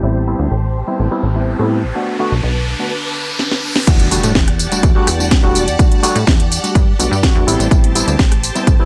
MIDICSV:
0, 0, Header, 1, 7, 480
1, 0, Start_track
1, 0, Key_signature, 1, "minor"
1, 0, Tempo, 480000
1, 31, Time_signature, 4, 2, 24, 8
1, 8851, End_track
2, 0, Start_track
2, 0, Title_t, "String machine"
2, 0, Program_c, 0, 50
2, 0, Note_on_c, 0, 67, 81
2, 0, Note_on_c, 0, 72, 75
2, 0, Note_on_c, 0, 81, 89
2, 1912, Note_off_c, 0, 67, 0
2, 1929, Note_off_c, 0, 72, 0
2, 1952, Note_on_c, 0, 71, 75
2, 1953, Note_on_c, 0, 62, 83
2, 3830, Note_off_c, 0, 81, 0
2, 3852, Note_off_c, 0, 71, 0
2, 3853, Note_off_c, 0, 62, 0
2, 3873, Note_on_c, 0, 78, 79
2, 3875, Note_on_c, 0, 74, 82
2, 3875, Note_on_c, 0, 81, 97
2, 3876, Note_on_c, 0, 67, 87
2, 7436, Note_off_c, 0, 78, 0
2, 7437, Note_off_c, 0, 74, 0
2, 7437, Note_off_c, 0, 81, 0
2, 7469, Note_on_c, 0, 72, 75
2, 7470, Note_on_c, 0, 81, 93
2, 8851, Note_off_c, 0, 67, 0
2, 8851, Note_off_c, 0, 72, 0
2, 8851, Note_off_c, 0, 81, 0
2, 8851, End_track
3, 0, Start_track
3, 0, Title_t, "Reed electric piano"
3, 0, Program_c, 1, 4
3, 30, Note_on_c, 1, 55, 68
3, 33, Note_on_c, 1, 59, 62
3, 36, Note_on_c, 1, 60, 66
3, 39, Note_on_c, 1, 64, 77
3, 236, Note_off_c, 1, 55, 0
3, 237, Note_off_c, 1, 59, 0
3, 239, Note_off_c, 1, 60, 0
3, 240, Note_off_c, 1, 64, 0
3, 270, Note_on_c, 1, 55, 77
3, 273, Note_on_c, 1, 59, 69
3, 275, Note_on_c, 1, 60, 70
3, 278, Note_on_c, 1, 64, 83
3, 485, Note_off_c, 1, 55, 0
3, 486, Note_off_c, 1, 59, 0
3, 488, Note_off_c, 1, 60, 0
3, 489, Note_off_c, 1, 64, 0
3, 870, Note_on_c, 1, 55, 82
3, 873, Note_on_c, 1, 59, 77
3, 874, Note_on_c, 1, 60, 76
3, 878, Note_on_c, 1, 64, 91
3, 1075, Note_off_c, 1, 55, 0
3, 1077, Note_off_c, 1, 59, 0
3, 1077, Note_off_c, 1, 60, 0
3, 1079, Note_off_c, 1, 64, 0
3, 1110, Note_on_c, 1, 55, 82
3, 1113, Note_on_c, 1, 59, 78
3, 1116, Note_on_c, 1, 60, 75
3, 1118, Note_on_c, 1, 64, 93
3, 1243, Note_off_c, 1, 55, 0
3, 1245, Note_off_c, 1, 59, 0
3, 1246, Note_off_c, 1, 60, 0
3, 1248, Note_off_c, 1, 64, 0
3, 1350, Note_on_c, 1, 55, 75
3, 1353, Note_on_c, 1, 59, 68
3, 1356, Note_on_c, 1, 60, 64
3, 1358, Note_on_c, 1, 64, 79
3, 1562, Note_off_c, 1, 55, 0
3, 1564, Note_off_c, 1, 59, 0
3, 1565, Note_off_c, 1, 60, 0
3, 1566, Note_off_c, 1, 64, 0
3, 1592, Note_on_c, 1, 55, 82
3, 1594, Note_on_c, 1, 59, 75
3, 1596, Note_on_c, 1, 60, 76
3, 1600, Note_on_c, 1, 64, 84
3, 1806, Note_off_c, 1, 55, 0
3, 1807, Note_off_c, 1, 59, 0
3, 1808, Note_off_c, 1, 60, 0
3, 1810, Note_off_c, 1, 64, 0
3, 1948, Note_on_c, 1, 57, 83
3, 1950, Note_on_c, 1, 59, 76
3, 1954, Note_on_c, 1, 62, 77
3, 1956, Note_on_c, 1, 66, 95
3, 2162, Note_off_c, 1, 57, 0
3, 2163, Note_off_c, 1, 59, 0
3, 2164, Note_off_c, 1, 62, 0
3, 2165, Note_off_c, 1, 66, 0
3, 2190, Note_on_c, 1, 57, 95
3, 2193, Note_on_c, 1, 59, 81
3, 2196, Note_on_c, 1, 62, 85
3, 2198, Note_on_c, 1, 66, 100
3, 2327, Note_off_c, 1, 57, 0
3, 2328, Note_off_c, 1, 59, 0
3, 2330, Note_off_c, 1, 62, 0
3, 2331, Note_off_c, 1, 66, 0
3, 2789, Note_on_c, 1, 57, 70
3, 2792, Note_on_c, 1, 59, 65
3, 2796, Note_on_c, 1, 62, 67
3, 2798, Note_on_c, 1, 66, 83
3, 2909, Note_off_c, 1, 57, 0
3, 2911, Note_off_c, 1, 59, 0
3, 2912, Note_off_c, 1, 62, 0
3, 2913, Note_off_c, 1, 66, 0
3, 3872, Note_on_c, 1, 55, 73
3, 3873, Note_on_c, 1, 57, 69
3, 3875, Note_on_c, 1, 62, 68
3, 3878, Note_on_c, 1, 66, 82
3, 4076, Note_off_c, 1, 55, 0
3, 4077, Note_off_c, 1, 57, 0
3, 4078, Note_off_c, 1, 62, 0
3, 4079, Note_off_c, 1, 66, 0
3, 4110, Note_on_c, 1, 55, 83
3, 4113, Note_on_c, 1, 57, 75
3, 4115, Note_on_c, 1, 62, 74
3, 4119, Note_on_c, 1, 66, 86
3, 4325, Note_off_c, 1, 55, 0
3, 4326, Note_off_c, 1, 57, 0
3, 4328, Note_off_c, 1, 62, 0
3, 4329, Note_off_c, 1, 66, 0
3, 4714, Note_on_c, 1, 55, 89
3, 4717, Note_on_c, 1, 57, 82
3, 4719, Note_on_c, 1, 62, 82
3, 4721, Note_on_c, 1, 66, 97
3, 4917, Note_off_c, 1, 55, 0
3, 4919, Note_off_c, 1, 57, 0
3, 4920, Note_off_c, 1, 62, 0
3, 4921, Note_off_c, 1, 66, 0
3, 4953, Note_on_c, 1, 55, 92
3, 4957, Note_on_c, 1, 57, 81
3, 4958, Note_on_c, 1, 62, 80
3, 4960, Note_on_c, 1, 66, 97
3, 5085, Note_off_c, 1, 55, 0
3, 5087, Note_off_c, 1, 57, 0
3, 5088, Note_off_c, 1, 62, 0
3, 5088, Note_off_c, 1, 66, 0
3, 5193, Note_on_c, 1, 55, 77
3, 5195, Note_on_c, 1, 57, 71
3, 5198, Note_on_c, 1, 62, 70
3, 5200, Note_on_c, 1, 66, 84
3, 5404, Note_off_c, 1, 55, 0
3, 5405, Note_off_c, 1, 57, 0
3, 5406, Note_off_c, 1, 62, 0
3, 5408, Note_off_c, 1, 66, 0
3, 5427, Note_on_c, 1, 55, 88
3, 5431, Note_on_c, 1, 57, 77
3, 5434, Note_on_c, 1, 62, 77
3, 5436, Note_on_c, 1, 66, 90
3, 5644, Note_off_c, 1, 55, 0
3, 5646, Note_off_c, 1, 57, 0
3, 5647, Note_off_c, 1, 62, 0
3, 5648, Note_off_c, 1, 66, 0
3, 5786, Note_on_c, 1, 55, 86
3, 5788, Note_on_c, 1, 57, 82
3, 5790, Note_on_c, 1, 62, 82
3, 5794, Note_on_c, 1, 66, 97
3, 6000, Note_off_c, 1, 55, 0
3, 6002, Note_off_c, 1, 57, 0
3, 6002, Note_off_c, 1, 62, 0
3, 6004, Note_off_c, 1, 66, 0
3, 6025, Note_on_c, 1, 55, 95
3, 6028, Note_on_c, 1, 57, 88
3, 6030, Note_on_c, 1, 62, 88
3, 6033, Note_on_c, 1, 66, 112
3, 6164, Note_off_c, 1, 55, 0
3, 6166, Note_off_c, 1, 57, 0
3, 6167, Note_off_c, 1, 62, 0
3, 6168, Note_off_c, 1, 66, 0
3, 6630, Note_on_c, 1, 55, 75
3, 6633, Note_on_c, 1, 57, 68
3, 6635, Note_on_c, 1, 62, 72
3, 6637, Note_on_c, 1, 66, 85
3, 6763, Note_off_c, 1, 55, 0
3, 6765, Note_off_c, 1, 57, 0
3, 6766, Note_off_c, 1, 62, 0
3, 6767, Note_off_c, 1, 66, 0
3, 6990, Note_on_c, 1, 55, 78
3, 6991, Note_on_c, 1, 57, 72
3, 6993, Note_on_c, 1, 62, 73
3, 6996, Note_on_c, 1, 66, 87
3, 7127, Note_off_c, 1, 55, 0
3, 7127, Note_off_c, 1, 57, 0
3, 7128, Note_off_c, 1, 62, 0
3, 7130, Note_off_c, 1, 66, 0
3, 7229, Note_on_c, 1, 55, 91
3, 7232, Note_on_c, 1, 57, 90
3, 7236, Note_on_c, 1, 62, 85
3, 7238, Note_on_c, 1, 66, 103
3, 7442, Note_off_c, 1, 55, 0
3, 7443, Note_off_c, 1, 57, 0
3, 7445, Note_off_c, 1, 62, 0
3, 7446, Note_off_c, 1, 66, 0
3, 7467, Note_on_c, 1, 55, 90
3, 7470, Note_on_c, 1, 59, 80
3, 7472, Note_on_c, 1, 60, 83
3, 7475, Note_on_c, 1, 64, 106
3, 7674, Note_off_c, 1, 55, 0
3, 7676, Note_off_c, 1, 59, 0
3, 7677, Note_off_c, 1, 60, 0
3, 7678, Note_off_c, 1, 64, 0
3, 7708, Note_on_c, 1, 55, 74
3, 7712, Note_on_c, 1, 59, 68
3, 7713, Note_on_c, 1, 60, 72
3, 7716, Note_on_c, 1, 64, 82
3, 7914, Note_off_c, 1, 55, 0
3, 7916, Note_off_c, 1, 59, 0
3, 7917, Note_off_c, 1, 60, 0
3, 7919, Note_off_c, 1, 64, 0
3, 7949, Note_on_c, 1, 55, 86
3, 7952, Note_on_c, 1, 59, 75
3, 7955, Note_on_c, 1, 60, 77
3, 7956, Note_on_c, 1, 64, 91
3, 8164, Note_off_c, 1, 55, 0
3, 8166, Note_off_c, 1, 59, 0
3, 8167, Note_off_c, 1, 60, 0
3, 8168, Note_off_c, 1, 64, 0
3, 8549, Note_on_c, 1, 55, 90
3, 8550, Note_on_c, 1, 59, 85
3, 8556, Note_on_c, 1, 60, 80
3, 8556, Note_on_c, 1, 64, 97
3, 8755, Note_off_c, 1, 55, 0
3, 8755, Note_off_c, 1, 59, 0
3, 8758, Note_off_c, 1, 60, 0
3, 8758, Note_off_c, 1, 64, 0
3, 8791, Note_on_c, 1, 55, 88
3, 8795, Note_on_c, 1, 59, 79
3, 8796, Note_on_c, 1, 60, 81
3, 8799, Note_on_c, 1, 64, 97
3, 8851, Note_off_c, 1, 55, 0
3, 8851, Note_off_c, 1, 59, 0
3, 8851, Note_off_c, 1, 60, 0
3, 8851, Note_off_c, 1, 64, 0
3, 8851, End_track
4, 0, Start_track
4, 0, Title_t, "Analog synth bass"
4, 0, Program_c, 2, 38
4, 25, Note_on_c, 2, 33, 97
4, 347, Note_off_c, 2, 33, 0
4, 390, Note_on_c, 2, 38, 86
4, 483, Note_off_c, 2, 38, 0
4, 508, Note_on_c, 2, 33, 92
4, 829, Note_off_c, 2, 33, 0
4, 992, Note_on_c, 2, 33, 94
4, 1087, Note_off_c, 2, 33, 0
4, 1227, Note_on_c, 2, 33, 90
4, 1548, Note_off_c, 2, 33, 0
4, 1591, Note_on_c, 2, 45, 100
4, 1833, Note_on_c, 2, 33, 90
4, 1848, Note_off_c, 2, 45, 0
4, 1925, Note_off_c, 2, 33, 0
4, 2315, Note_on_c, 2, 35, 90
4, 2406, Note_off_c, 2, 35, 0
4, 2434, Note_on_c, 2, 35, 88
4, 2751, Note_off_c, 2, 35, 0
4, 3871, Note_on_c, 2, 40, 99
4, 4190, Note_off_c, 2, 40, 0
4, 4235, Note_on_c, 2, 45, 92
4, 4326, Note_off_c, 2, 45, 0
4, 4352, Note_on_c, 2, 40, 98
4, 4671, Note_off_c, 2, 40, 0
4, 4832, Note_on_c, 2, 40, 97
4, 4927, Note_off_c, 2, 40, 0
4, 5071, Note_on_c, 2, 40, 95
4, 5390, Note_off_c, 2, 40, 0
4, 5434, Note_on_c, 2, 28, 108
4, 5676, Note_on_c, 2, 40, 92
4, 5691, Note_off_c, 2, 28, 0
4, 5766, Note_off_c, 2, 40, 0
4, 6154, Note_on_c, 2, 45, 91
4, 6245, Note_off_c, 2, 45, 0
4, 6270, Note_on_c, 2, 40, 94
4, 6590, Note_off_c, 2, 40, 0
4, 6751, Note_on_c, 2, 43, 101
4, 6939, Note_off_c, 2, 43, 0
4, 6994, Note_on_c, 2, 35, 95
4, 7088, Note_off_c, 2, 35, 0
4, 7112, Note_on_c, 2, 43, 91
4, 7298, Note_off_c, 2, 43, 0
4, 7352, Note_on_c, 2, 40, 109
4, 7444, Note_off_c, 2, 40, 0
4, 7472, Note_on_c, 2, 33, 105
4, 7567, Note_off_c, 2, 33, 0
4, 7593, Note_on_c, 2, 33, 88
4, 7684, Note_off_c, 2, 33, 0
4, 7711, Note_on_c, 2, 33, 95
4, 8030, Note_off_c, 2, 33, 0
4, 8072, Note_on_c, 2, 38, 90
4, 8164, Note_off_c, 2, 38, 0
4, 8670, Note_on_c, 2, 33, 104
4, 8766, Note_off_c, 2, 33, 0
4, 8851, End_track
5, 0, Start_track
5, 0, Title_t, "Impact"
5, 0, Program_c, 3, 103
5, 3874, Note_on_c, 3, 60, 80
5, 5792, Note_off_c, 3, 60, 0
5, 8851, End_track
6, 0, Start_track
6, 0, Title_t, "Riser"
6, 0, Program_c, 4, 103
6, 30, Note_on_c, 4, 60, 72
6, 3871, Note_off_c, 4, 60, 0
6, 8851, End_track
7, 0, Start_track
7, 0, Title_t, "Drums"
7, 3392, Note_on_c, 9, 38, 57
7, 3492, Note_off_c, 9, 38, 0
7, 3514, Note_on_c, 9, 38, 60
7, 3614, Note_off_c, 9, 38, 0
7, 3755, Note_on_c, 9, 38, 83
7, 3855, Note_off_c, 9, 38, 0
7, 3872, Note_on_c, 9, 36, 124
7, 3874, Note_on_c, 9, 42, 72
7, 3874, Note_on_c, 9, 49, 110
7, 3880, Note_on_c, 9, 54, 36
7, 3972, Note_off_c, 9, 36, 0
7, 3974, Note_off_c, 9, 42, 0
7, 3974, Note_off_c, 9, 49, 0
7, 3980, Note_off_c, 9, 54, 0
7, 3996, Note_on_c, 9, 42, 57
7, 4096, Note_off_c, 9, 42, 0
7, 4114, Note_on_c, 9, 46, 109
7, 4120, Note_on_c, 9, 54, 81
7, 4214, Note_off_c, 9, 46, 0
7, 4220, Note_off_c, 9, 54, 0
7, 4234, Note_on_c, 9, 42, 54
7, 4240, Note_on_c, 9, 54, 45
7, 4334, Note_off_c, 9, 42, 0
7, 4340, Note_off_c, 9, 54, 0
7, 4352, Note_on_c, 9, 36, 103
7, 4352, Note_on_c, 9, 38, 127
7, 4359, Note_on_c, 9, 54, 35
7, 4452, Note_off_c, 9, 36, 0
7, 4452, Note_off_c, 9, 38, 0
7, 4459, Note_off_c, 9, 54, 0
7, 4477, Note_on_c, 9, 37, 59
7, 4477, Note_on_c, 9, 42, 69
7, 4577, Note_off_c, 9, 37, 0
7, 4577, Note_off_c, 9, 42, 0
7, 4594, Note_on_c, 9, 46, 97
7, 4600, Note_on_c, 9, 54, 80
7, 4694, Note_off_c, 9, 46, 0
7, 4700, Note_off_c, 9, 54, 0
7, 4717, Note_on_c, 9, 42, 55
7, 4722, Note_on_c, 9, 54, 46
7, 4817, Note_off_c, 9, 42, 0
7, 4822, Note_off_c, 9, 54, 0
7, 4832, Note_on_c, 9, 36, 127
7, 4832, Note_on_c, 9, 42, 73
7, 4838, Note_on_c, 9, 54, 35
7, 4932, Note_off_c, 9, 36, 0
7, 4932, Note_off_c, 9, 42, 0
7, 4938, Note_off_c, 9, 54, 0
7, 5072, Note_on_c, 9, 37, 67
7, 5072, Note_on_c, 9, 46, 108
7, 5078, Note_on_c, 9, 54, 84
7, 5172, Note_off_c, 9, 37, 0
7, 5172, Note_off_c, 9, 46, 0
7, 5177, Note_off_c, 9, 54, 0
7, 5202, Note_on_c, 9, 54, 45
7, 5302, Note_off_c, 9, 54, 0
7, 5312, Note_on_c, 9, 36, 106
7, 5313, Note_on_c, 9, 38, 123
7, 5314, Note_on_c, 9, 42, 73
7, 5320, Note_on_c, 9, 54, 34
7, 5411, Note_off_c, 9, 36, 0
7, 5413, Note_off_c, 9, 38, 0
7, 5414, Note_off_c, 9, 42, 0
7, 5420, Note_off_c, 9, 54, 0
7, 5552, Note_on_c, 9, 46, 93
7, 5558, Note_on_c, 9, 54, 78
7, 5652, Note_off_c, 9, 46, 0
7, 5658, Note_off_c, 9, 54, 0
7, 5677, Note_on_c, 9, 42, 59
7, 5683, Note_on_c, 9, 54, 46
7, 5777, Note_off_c, 9, 42, 0
7, 5783, Note_off_c, 9, 54, 0
7, 5791, Note_on_c, 9, 36, 127
7, 5794, Note_on_c, 9, 42, 70
7, 5800, Note_on_c, 9, 54, 35
7, 5891, Note_off_c, 9, 36, 0
7, 5894, Note_off_c, 9, 42, 0
7, 5900, Note_off_c, 9, 54, 0
7, 5916, Note_on_c, 9, 42, 51
7, 6016, Note_off_c, 9, 42, 0
7, 6034, Note_on_c, 9, 46, 113
7, 6040, Note_on_c, 9, 54, 74
7, 6134, Note_off_c, 9, 46, 0
7, 6140, Note_off_c, 9, 54, 0
7, 6156, Note_on_c, 9, 42, 56
7, 6162, Note_on_c, 9, 54, 43
7, 6256, Note_off_c, 9, 42, 0
7, 6262, Note_off_c, 9, 54, 0
7, 6272, Note_on_c, 9, 36, 112
7, 6273, Note_on_c, 9, 38, 127
7, 6280, Note_on_c, 9, 54, 33
7, 6371, Note_off_c, 9, 36, 0
7, 6373, Note_off_c, 9, 38, 0
7, 6380, Note_off_c, 9, 54, 0
7, 6399, Note_on_c, 9, 42, 68
7, 6499, Note_off_c, 9, 42, 0
7, 6516, Note_on_c, 9, 46, 99
7, 6522, Note_on_c, 9, 54, 82
7, 6616, Note_off_c, 9, 46, 0
7, 6622, Note_off_c, 9, 54, 0
7, 6640, Note_on_c, 9, 42, 52
7, 6646, Note_on_c, 9, 54, 42
7, 6740, Note_off_c, 9, 42, 0
7, 6746, Note_off_c, 9, 54, 0
7, 6752, Note_on_c, 9, 36, 126
7, 6755, Note_on_c, 9, 42, 71
7, 6761, Note_on_c, 9, 54, 33
7, 6852, Note_off_c, 9, 36, 0
7, 6855, Note_off_c, 9, 42, 0
7, 6861, Note_off_c, 9, 54, 0
7, 6996, Note_on_c, 9, 46, 111
7, 7002, Note_on_c, 9, 54, 80
7, 7096, Note_off_c, 9, 46, 0
7, 7102, Note_off_c, 9, 54, 0
7, 7126, Note_on_c, 9, 54, 44
7, 7226, Note_off_c, 9, 54, 0
7, 7232, Note_on_c, 9, 36, 114
7, 7235, Note_on_c, 9, 38, 126
7, 7236, Note_on_c, 9, 42, 69
7, 7242, Note_on_c, 9, 54, 34
7, 7332, Note_off_c, 9, 36, 0
7, 7335, Note_off_c, 9, 38, 0
7, 7336, Note_off_c, 9, 42, 0
7, 7342, Note_off_c, 9, 54, 0
7, 7479, Note_on_c, 9, 46, 98
7, 7484, Note_on_c, 9, 54, 77
7, 7579, Note_off_c, 9, 46, 0
7, 7584, Note_off_c, 9, 54, 0
7, 7601, Note_on_c, 9, 42, 55
7, 7607, Note_on_c, 9, 54, 44
7, 7701, Note_off_c, 9, 42, 0
7, 7707, Note_off_c, 9, 54, 0
7, 7711, Note_on_c, 9, 36, 127
7, 7716, Note_on_c, 9, 42, 64
7, 7722, Note_on_c, 9, 54, 34
7, 7811, Note_off_c, 9, 36, 0
7, 7816, Note_off_c, 9, 42, 0
7, 7822, Note_off_c, 9, 54, 0
7, 7839, Note_on_c, 9, 42, 53
7, 7938, Note_off_c, 9, 42, 0
7, 7954, Note_on_c, 9, 46, 112
7, 7960, Note_on_c, 9, 54, 76
7, 8054, Note_off_c, 9, 46, 0
7, 8059, Note_off_c, 9, 54, 0
7, 8077, Note_on_c, 9, 42, 53
7, 8083, Note_on_c, 9, 54, 44
7, 8177, Note_off_c, 9, 42, 0
7, 8183, Note_off_c, 9, 54, 0
7, 8191, Note_on_c, 9, 36, 115
7, 8195, Note_on_c, 9, 38, 120
7, 8202, Note_on_c, 9, 54, 33
7, 8291, Note_off_c, 9, 36, 0
7, 8295, Note_off_c, 9, 38, 0
7, 8302, Note_off_c, 9, 54, 0
7, 8317, Note_on_c, 9, 37, 63
7, 8317, Note_on_c, 9, 42, 64
7, 8417, Note_off_c, 9, 37, 0
7, 8417, Note_off_c, 9, 42, 0
7, 8434, Note_on_c, 9, 46, 103
7, 8440, Note_on_c, 9, 54, 75
7, 8534, Note_off_c, 9, 46, 0
7, 8540, Note_off_c, 9, 54, 0
7, 8555, Note_on_c, 9, 42, 50
7, 8561, Note_on_c, 9, 54, 42
7, 8655, Note_off_c, 9, 42, 0
7, 8661, Note_off_c, 9, 54, 0
7, 8671, Note_on_c, 9, 36, 127
7, 8673, Note_on_c, 9, 42, 66
7, 8679, Note_on_c, 9, 54, 34
7, 8771, Note_off_c, 9, 36, 0
7, 8773, Note_off_c, 9, 42, 0
7, 8779, Note_off_c, 9, 54, 0
7, 8851, End_track
0, 0, End_of_file